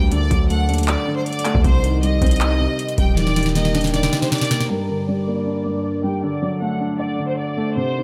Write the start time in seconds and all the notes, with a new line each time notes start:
Already playing: D2 G2 D3 G3 A#3 D4 G5
0.11 D3 A4 D5 F#5, closed hi-hat
0.31 D2 F#3, kick, closed hi-hat
0.50 A3 F#5, closed hi-hat
0.69 D#2 D4, closed hi-hat
0.74 closed hi-hat
0.78 closed hi-hat
0.83 D2, closed hi-hat
0.88 D5, clap, closed hi-hat
1.07 D3
1.16 C5
1.26 D5, closed hi-hat
1.33 closed hi-hat
1.39 closed hi-hat
1.45 A3, clap, closed hi-hat
1.55 D2, kick
1.64 C2 C3 C4 G4 C5 D#5, kick, closed hi-hat
1.83 D#3, closed hi-hat
2.02 G3 D#5, closed hi-hat
2.22 C2 C4, kick, closed hi-hat
2.26 closed hi-hat
2.31 closed hi-hat
2.36 closed hi-hat
2.41 D#4, clap, closed hi-hat
2.60 C3
2.79 closed hi-hat
2.89 closed hi-hat
2.98 D#1 G3 G5, kick, closed hi-hat
3.17 D#3 G4 A#4 D5 G5, snare, closed hi-hat
3.27 snare
3.36 G3, snare, closed hi-hat
3.43 snare, closed hi-hat
3.49 closed hi-hat
3.55 A#3 D#5, snare, closed hi-hat
3.65 snare
3.74 D4, snare, closed hi-hat
3.81 snare, closed hi-hat
3.87 closed hi-hat
3.94 D#4 D5, snare, closed hi-hat
4.03 snare
4.13 D#3, snare
4.22 C5, snare
4.32 D5, snare, closed hi-hat
4.38 snare, closed hi-hat
4.45 closed hi-hat
4.51 A#3, snare, closed hi-hat
4.61 snare
4.69 G2 G3 D4 A#4
4.89 D3
5.08 G3 D5
5.27 A#3
5.46 D4
5.66 G2
6.04 G3 G5
6.23 D3 A4 D5 F#5
6.42 F#3
6.61 A3 F#5
6.80 D4
6.99 D5
7.19 D3
7.28 C5
7.38 D5
7.57 A3
7.76 C3 C4 G4 C5 D#5
7.95 D#3